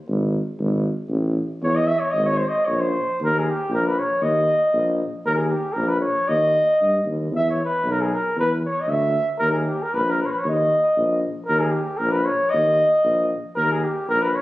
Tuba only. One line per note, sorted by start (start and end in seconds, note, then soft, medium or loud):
0.09 0.37 G#1 loud
0.60 0.88 G#1 loud
1.09 1.38 A1 medium
1.63 1.91 E2 loud
2.15 2.43 G#1 loud
2.68 2.96 A#1 medium
3.21 3.48 D#2 loud
3.70 3.98 A#1 loud
4.21 4.50 D#2 medium
4.74 5.02 A#1 loud
5.25 5.53 D#2 medium
5.76 6.05 A#1 medium
6.29 6.58 D#2 medium
6.81 7.04 G2 medium
7.05 7.29 D#2 medium
7.32 7.61 E2 medium
7.83 8.13 B1 medium
8.36 8.65 E2 medium
8.87 9.16 D2 medium
9.40 9.69 D#2 loud
9.94 10.22 A#1 loud
10.45 10.74 D#2 medium
10.97 11.25 A#1 medium
11.49 11.78 D#2 loud
12.01 12.29 A#1 medium
12.53 12.82 D#2 medium
13.04 13.33 A#1 loud
13.56 13.85 D#2 loud
14.09 14.37 A#1 loud